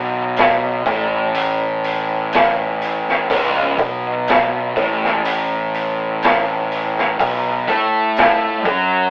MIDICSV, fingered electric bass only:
0, 0, Header, 1, 2, 480
1, 0, Start_track
1, 0, Tempo, 974026
1, 1624, Time_signature, 4, 2, 24, 8
1, 4484, End_track
2, 0, Start_track
2, 0, Title_t, "Fingered electric bass"
2, 0, Program_c, 0, 33
2, 0, Note_on_c, 0, 35, 92
2, 403, Note_off_c, 0, 35, 0
2, 423, Note_on_c, 0, 33, 84
2, 1605, Note_off_c, 0, 33, 0
2, 1625, Note_on_c, 0, 25, 100
2, 1848, Note_off_c, 0, 25, 0
2, 1865, Note_on_c, 0, 35, 104
2, 2325, Note_off_c, 0, 35, 0
2, 2345, Note_on_c, 0, 33, 86
2, 3525, Note_off_c, 0, 33, 0
2, 3546, Note_on_c, 0, 35, 104
2, 3768, Note_off_c, 0, 35, 0
2, 3786, Note_on_c, 0, 45, 103
2, 4245, Note_off_c, 0, 45, 0
2, 4266, Note_on_c, 0, 42, 97
2, 4484, Note_off_c, 0, 42, 0
2, 4484, End_track
0, 0, End_of_file